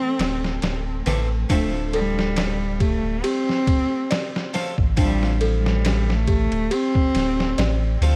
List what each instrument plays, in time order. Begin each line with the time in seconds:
Already playing: harpsichord E3 A3 C4 E4, synth texture A3 A4, cello C4
0.19 analog synth bass D1, snare, ride
0.44 snare
0.62 analog synth bass D1, snare, ride
1.06 analog synth bass A1, harpsichord E3 A3 C4 G4, snare, ride
1.49 analog synth bass D1, harpsichord F3 A3 C4 E4, cello A3, celesta D4, kick, ride
1.93 cello G3, celesta A4, ride
2.19 snare
2.36 snare, ride
2.80 cello A3, celesta G4, kick, ride
3.04 analog synth bass D1
3.24 cello C4, celesta G4, ride
3.49 snare
3.67 kick, ride
4.10 celesta D5, snare, ride
4.36 snare
4.54 harpsichord F3 A3 C4 F4, snare, ride
4.78 analog synth bass A1, kick
4.97 harpsichord F3 A3 C4 E4, cello G3, celesta D4, kick, ride
5.23 snare
5.41 celesta A4, ride
5.57 cello G3
5.66 snare
5.85 snare, ride
6.10 snare
6.15 cello A3
6.28 celesta G4, kick, ride
6.52 analog synth bass D1, ride
6.71 cello C4, celesta G4, ride
6.95 kick
7.15 analog synth bass D1, snare, ride
7.40 snare
7.58 analog synth bass A1, celesta D5, snare, ride
8.01 analog synth bass D2, harpsichord F3 A3 C4 F4, ride